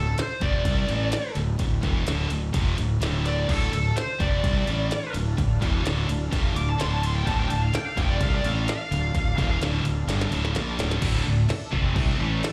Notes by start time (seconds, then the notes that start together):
Already playing: D1 D2 A2 A4
0.18 C5, muted distorted electric guitar stroke, muted fingered electric bass stroke, snare, ride
0.40 F1 F2 C3 F3 D5, kick, ride
0.64 C2 C3 G3 C4, kick, ride
0.87 A1 A2 E3 A3, ride
1.12 snare, ride
1.35 D1 D2 A2, ride
1.58 D1 D2 A2, kick, ride
1.82 E1 E2 B2 E3, kick, ride
2.06 D1 D2 A2 D3, snare, ride
2.29 D1 D2 A2, ride
2.53 F1 F2 C3 F3, kick, ride
2.78 D1 D2 A2, ride
3.00 D1 D2 A2 D3, snare, ride
3.25 D5, ride
3.48 D1 D2 A2 D3 D4 A4 F5, kick, crash
3.72 D1 D2 A2 A4, ride
3.96 C5, muted fingered electric bass stroke, muted distorted electric guitar stroke, snare, ride
4.20 F1 F2 C3 F3 D5, kick, ride
4.44 C2 C3 G3 C4, kick, ride
4.67 A1 A2 E3 A3, ride
4.91 snare, ride
5.14 D1 D2 A2, ride
5.37 D1 D2 A2, kick, ride
5.60 E1 E2 B2 E3, kick, ride
5.83 D1 D2 A2 D3, snare, ride
6.08 D1 D2 A2, ride
6.30 F1 F2 C3 F3, kick, ride
6.54 D1 D2 A2 D6, ride
6.70 A5
6.78 D1 D2 A2 D3 C6, snare, ride
6.93 A5
7.03 C6, ride
7.15 G5
7.24 D1 D2 A2 D3 A5, kick, ride
7.39 G5
7.49 D1 D2 A2 A5, ride
7.63 F5
7.73 G5, muted distorted electric guitar stroke, muted fingered electric bass stroke, snare, ride
7.86 F5
7.96 F1 F2 C3 F3 G5, kick, ride
8.09 D5
8.20 C2 C3 G3 C4 F5, kick, ride
8.35 D5
8.44 A1 A2 E3 A3 F5, ride
8.68 F5, snare, ride
8.91 D1 D2 A2, ride
9.15 D1 D2 A2, kick, ride
9.37 E1 E2 B2 E3, kick, ride
9.61 D1 D2 A2 D3, snare, ride
9.84 D1 D2 A2, ride
10.07 G1 G2 D3 G3, snare, ride
10.21 snare
10.31 D1 D2 A2 D3, ride
10.45 snare
10.55 A#1 A#2 F3 A#3, snare, ride
10.79 D1 D2 A2 D3, snare, ride
10.91 snare
11.02 D1 D2 A2 D3 D4 A4 E5, kick, crash
11.26 D1 D2 A2
11.48 muted distorted electric guitar stroke, muted fingered electric bass stroke, snare, crash
11.72 F1 F2 C3 F3, kick
11.96 C2 C3 G3 C4, kick, crash
12.18 A1 A2 E3 A3
12.43 snare, crash